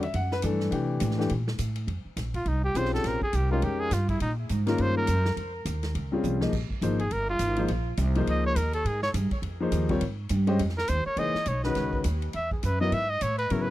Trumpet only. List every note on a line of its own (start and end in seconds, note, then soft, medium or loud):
2.36 2.50 F4 medium
2.48 2.64 D#4 medium
2.64 2.79 G4 loud
2.77 2.93 C5 loud
2.94 3.09 A4 medium
3.07 3.22 A#4 medium
3.23 3.37 G#4 medium
3.36 3.51 G4 medium
3.51 3.66 F4 medium
3.64 3.81 G4 medium
3.80 3.95 G#4 loud
3.93 4.09 F4 medium
4.10 4.20 E4 medium
4.22 4.32 D#4 medium
4.68 4.83 A#4 medium
4.82 4.97 C5 loud
4.97 5.35 A#4 loud
7.00 7.14 G#4 medium
7.12 7.29 A#4 medium
7.30 7.67 F4 loud
8.30 8.45 D#5 medium
8.46 8.59 C#5 loud
8.57 8.74 A#4 medium
8.74 8.88 A4 medium
8.87 9.02 G#4 medium
9.03 9.10 C#5 loud
10.78 10.90 A#4 loud
10.89 11.06 C5 loud
11.06 11.20 C#5 loud
11.19 11.50 D#5 loud
11.48 11.64 C#5 medium
11.65 12.02 B4 medium
12.36 12.51 E5 medium
12.53 12.66 G#4 medium
12.65 12.80 B4 medium
12.81 12.95 D#5 loud
12.93 13.11 E5 loud
13.10 13.24 D#5 loud
13.22 13.38 C#5 medium
13.38 13.53 B4 loud
13.52 13.63 A#4 medium
13.62 13.70 B4 loud